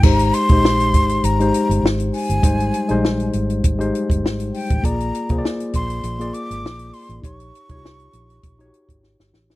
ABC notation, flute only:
X:1
M:4/4
L:1/8
Q:"Swing 16ths" 1/4=100
K:Ab
V:1 name="Flute"
b c'3 b2 z a- | a3 z4 g | b2 z c'2 =d'2 c' | d'6 z2 |]